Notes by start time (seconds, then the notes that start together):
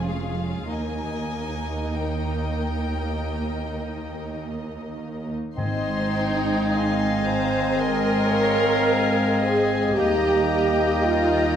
Already playing: F1 F2 G#3 C#4 F4 G#4
0.06 F5
0.68 D#2 A#3 D#4 A#4 D#5 G#5
1.96 G5
5.56 G#1 G#2 G#3 C4 D#4 C5 D#5 G#5 C6
6.15 G5
6.71 F5 G#5 C6
7.25 C5 A#5
7.78 A#4 D#5 C6
8.31 C#5 F5
8.87 C5 D#5 G#5
9.42 G#4 G#5
9.97 D#2 G3 A#3 D#4 G4 D#5 G5 A#5
10.53 D#5
11.05 F4 A#5